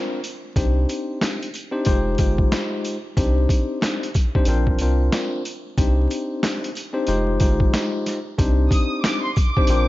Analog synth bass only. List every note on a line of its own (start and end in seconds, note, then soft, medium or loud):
0.56 0.86 C2 loud
1.87 2.16 F1 loud
2.19 2.48 G1 loud
3.17 3.46 C2 loud
4.47 4.77 A#1 loud
4.80 5.09 C2 medium
5.78 6.07 C2 loud
7.08 7.38 F1 loud
7.40 7.70 G1 loud
8.39 8.68 C2 loud
9.69 9.88 A#1 loud